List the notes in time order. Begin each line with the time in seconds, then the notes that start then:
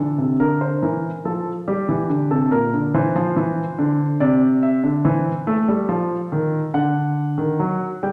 Already playing: D3 A4
0.18 C3
0.40 D3 A#4
0.61 C5
0.82 E3 A#4
1.25 F3 A4
1.68 G3 G4
1.89 E3
2.10 D3
2.31 C3 A4
2.51 A#2 A#4
2.73 D3
2.94 E3 C5
3.16 F3
3.36 E3
3.79 D3
4.20 C3 D5
4.63 E5
4.83 D3
5.05 E3 C5
5.47 A3 A4
5.68 G3
5.89 F3
6.32 D#3
6.74 D3 F#5
7.38 D#3
7.59 F#3
8.03 G3 G5